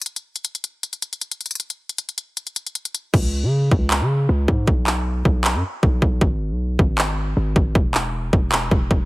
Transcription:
0.01 closed hi-hat
0.06 closed hi-hat
0.16 closed hi-hat
0.36 closed hi-hat
0.45 closed hi-hat
0.55 closed hi-hat
0.64 closed hi-hat
0.83 closed hi-hat
0.93 closed hi-hat
1.02 closed hi-hat
1.13 closed hi-hat
1.21 closed hi-hat
1.31 closed hi-hat
1.41 closed hi-hat
1.46 closed hi-hat
1.51 closed hi-hat
1.55 closed hi-hat
1.60 closed hi-hat
1.70 closed hi-hat
1.89 closed hi-hat
1.98 closed hi-hat
2.09 closed hi-hat
2.18 closed hi-hat
2.37 closed hi-hat
2.47 closed hi-hat
2.56 closed hi-hat
2.66 closed hi-hat
2.75 closed hi-hat
2.85 closed hi-hat
2.95 closed hi-hat
3.14 808-style bass C#2, kick, crash
3.43 808-style bass C#3
3.71 808-style bass C#2, kick
3.91 clap
4.01 808-style bass C#3
4.29 808-style bass C#2
4.48 808-style bass G#2, kick
4.67 808-style bass B1, kick
4.87 clap
5.25 808-style bass B1, kick
5.44 clap
5.55 808-style bass F#2
5.83 808-style bass B1, kick
6.02 808-style bass B1, kick
6.21 808-style bass G#1, kick
6.51 808-style bass B1
6.79 808-style bass G#1, kick
6.98 clap
7.37 808-style bass G#1
7.56 808-style bass G#1, kick
7.75 808-style bass E1, kick
7.94 clap
8.33 808-style bass E1, kick
8.52 clap
8.71 808-style bass E1, kick
8.91 808-style bass E1, kick

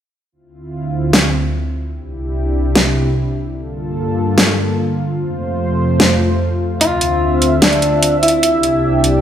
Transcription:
0.32 analog synth pad D2 D3 C4 E4 F4
1.13 snare
1.94 analog synth pad C2 C3 D4 E4 G4
2.75 snare
3.57 analog synth pad G2 D3 A#3 F4 A4
4.38 snare
5.19 analog synth pad F2 C3 A3 C5
6.00 snare
6.81 analog synth pad D2 D3 C4 E5, clean electric guitar F4, closed hi-hat
7.01 closed hi-hat
7.42 closed hi-hat
7.62 clean electric guitar D4, snare, closed hi-hat
7.73 closed hi-hat
7.82 closed hi-hat
8.03 closed hi-hat
8.23 clean electric guitar E4, closed hi-hat
8.28 closed hi-hat
8.43 analog synth pad C2 C3 D4 G4, closed hi-hat
8.63 closed hi-hat
9.04 closed hi-hat

